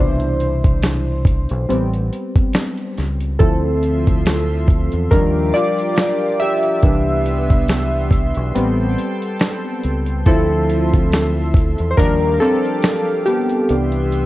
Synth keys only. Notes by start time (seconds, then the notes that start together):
Already playing: B2 E3 E4 C5
0.00 D4
1.69 G3 B3 C4
3.39 F3 C4 E4 A4
5.11 F3 G3 D4 A#4
5.54 F4 D5
6.40 G4 E5
6.83 E3 B3 D4
8.55 G3 B3 C4
10.26 F3 C4 E4 A4
11.91 C5
11.97 F3 G3 D4 A#4
12.34 A#4
12.40 C4 A4
13.26 B3 G4
13.69 E3 B3 D4